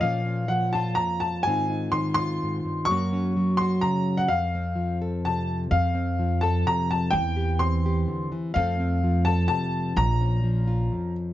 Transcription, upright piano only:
X:1
M:3/4
L:1/16
Q:1/4=127
K:Bbm
V:1 name="Upright piano"
f4 g2 =a2 b2 a2 | a4 c'2 c'6 | d'6 c'2 b3 g | f6 z2 =a3 z |
f6 =a2 b2 a2 | =g4 c'6 z2 | f6 =a2 a4 | b8- b2 z2 |]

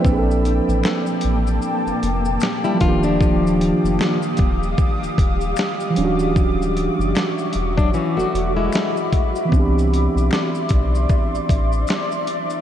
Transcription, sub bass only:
X:1
M:4/4
L:1/16
Q:"Swing 16ths" 1/4=76
K:Ddor
V:1 name="Sub bass" clef=bass
_B,,,3 A,,, z2 A,,,2 z F,,, F,,,2 z2 _E,,,2- | _E,,,3 F,,, z2 E,,,2 z E,,, E,,,2 z2 D,,,2- | D,,,3 ^F,,, z2 E,,,2 z E,,, E,,,2 z4 | C,,3 B,,, z2 B,,,2 z A,,, A,,,2 z4 |]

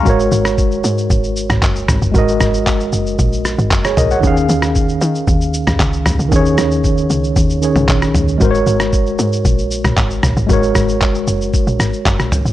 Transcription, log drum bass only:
X:1
M:4/4
L:1/16
Q:1/4=115
K:Abdor
V:1 name="Log drum bass" clef=bass
A,,,2 A,,,4 A,,2 A,,,3 A,,, G,,,2 A,,, G,,, | A,,,2 A,,,4 G,,,2 B,,,3 A,,, G,,,2 B,,,2 | E,,2 E,,4 E,2 E,,3 E,, D,,2 E,, D,, | E,,2 E,,4 D,,2 E,,3 D,, B,,,2 E,,2 |
A,,,2 A,,,4 A,,2 B,,,3 B,,, A,,,2 B,,, A,,, | A,,,2 A,,,4 G,,,2 z B,,, A,,, z G,,, B,,, z A,,, |]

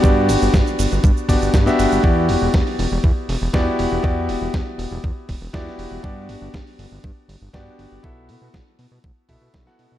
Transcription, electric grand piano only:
X:1
M:4/4
L:1/16
Q:1/4=120
K:Em
V:1 name="Electric grand piano"
[B,DFGd]8- [B,DFGd]2 [B,DFGd]3 [B,DFGe]3 | [B,EFGd]12 [B,EFGd]4 | [B,EFGd]12 [B,EFGd]4 | [B,DFGd]12 [B,DFGd]4 |
[B,EFAe]8- [B,EFAe]2 [B,EFAe]3 [B,EFAf]3 |]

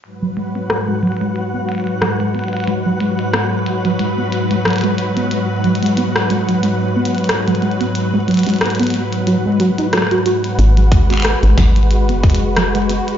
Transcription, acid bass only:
X:1
M:4/4
L:1/16
Q:"Swing 16ths" 1/4=91
K:G#m
V:1 name="Acid bass" clef=bass
z F, G, B, z G, F, G, z B, G, z F, G, B, z | G, F, G, z B, G, z F, G, B, z G, F, G, z B, | G, z F, G, B, z G, F, G, z B, G, z F, G, B, | z G, F, G, z B, G, z F, G, F, D F, F F z |
z F, G, B, z G, F, G, z B, z2 F, G, B, z |]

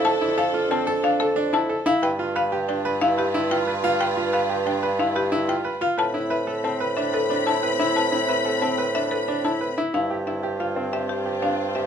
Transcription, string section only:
X:1
M:6/4
L:1/8
Q:1/4=182
K:Gmix
V:1 name="String section"
[DA]8- [DA]3 z | [FB]12- | [FB]8- [FB]3 z | [Cb]12- |
[Cb]8- [Cb]3 z | [CF]12 |]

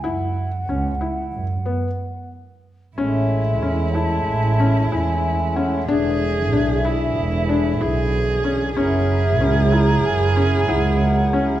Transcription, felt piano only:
X:1
M:9/8
L:1/8
Q:3/8=62
K:F#m
V:1 name="Felt piano"
E2 C E2 B, z3 | C2 C E2 C E2 C | D2 D E2 D E2 C | C2 C E2 C E2 C |]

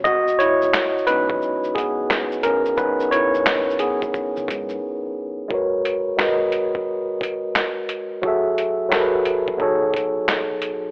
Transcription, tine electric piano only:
X:1
M:4/4
L:1/8
Q:"Swing 16ths" 1/4=88
K:G#m
V:1 name="Tine electric piano"
[Fd] [Ec]2 [DB]2 [B,G]2 [CA] | [DB] [Ec]2 [B,G]4 z | [G,FABc]2 [G,FABd]4 z2 | [F,FG=Ae]2 [F,FGA^AB]2 [B,,F,DG=Ac]4 |]
V:2 name="Tine electric piano"
z3 [F,G,B,C]4- [F,G,B,C] | [F,B,CA]3 z4 z | z8 | z8 |]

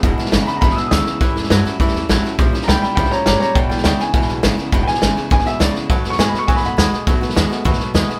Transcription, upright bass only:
X:1
M:4/4
L:1/8
Q:1/4=205
K:Emix
V:1 name="Upright bass" clef=bass
E,,, z G,,, z G,,, z D,, z | A,,, E,, =G,, z F,, E,, A,,, z | ^A,,, z C,, z C,, z =G,,, z | E,,, B,,, D,, z C,, B,,, G,,, z |
E,,, z G,,, z G,,, z C,, z | B,,, F,, A,, z G,, F,, ^D,, z | B,,, z ^D,, z D,, z D,, z |]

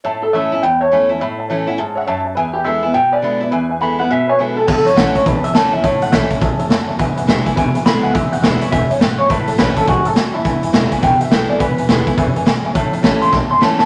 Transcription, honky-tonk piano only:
X:1
M:4/4
L:1/8
Q:"Swing" 1/4=208
K:A
V:1 name="Honky-tonk piano"
[cea] [cea] [cea] [cea] [ceb] [cea] [ceg] [cea] | [ceb] [cea] [cea] [cef] [cea] [cef] [cea] [cea] | [Beg] [Beg] [Beg] [Beg] [Beg] [Beg] [Beb] [Be] | [Beg] [Beg] [Beg] [Beb] [Beg] [Beg] [Beg] [Beg] |
[cea] [cea] [cea] [cea] [cea] [ce] [cea] [cea] | [cea] [cea] [cea] [cea] [cea] [cea] [cea] [cea] | [Beg] [Bef] [Beg] [Beg] [Beg] [Beg] [Beg] [Beg] | [Beg] [Beg] [Beg] [Beg] [Beg] [Beg] [Beg] [Beg] |
[cea] [cea] [ceg] [cea] [ceg] [cea] [ceg] [cea] | [Beg] [Beg] [Beg] [Beg] [Beg] [Bef] [Beg] [Beg] | [Beg] [Beg] [Beg] [Beg] [Beg] [Beg] [Beg] [Beg] | [cea] [cea] [cea] [cea] [cea] [ceg] [cea] [ce] |]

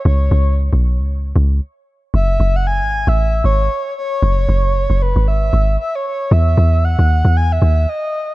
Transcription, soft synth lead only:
X:1
M:4/4
L:1/16
Q:"Swing 16ths" 1/4=115
K:F#dor
V:1 name="Soft synth lead"
c4 z12 | e3 f g3 e3 c4 c2- | c6 B2 e4 e c c2 | e4 f4 g e e2 d4 |]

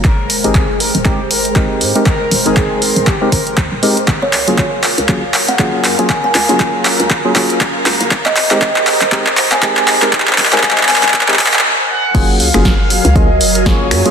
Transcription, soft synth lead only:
X:1
M:4/4
L:1/16
Q:"Swing 16ths" 1/4=119
K:F#
V:1 name="Soft synth lead"
A3 G3 A2 =G2 A2 z4 | A3 G3 A2 =G2 A2 z4 | z16 | z16 |
z16 | z12 z2 f2- | f2 e6 d4 c4 |]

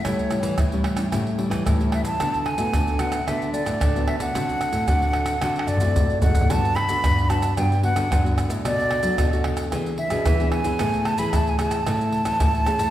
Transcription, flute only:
X:1
M:4/4
L:1/16
Q:1/4=112
K:A
V:1 name="Flute"
c4 z8 z2 e a- | a2 g4 f2 e2 d4 e f- | f8- f2 d4 f2 | a2 b4 a2 =g2 f4 z2 |
d4 z6 e4 g2- | g2 a b a g a8- a2 |]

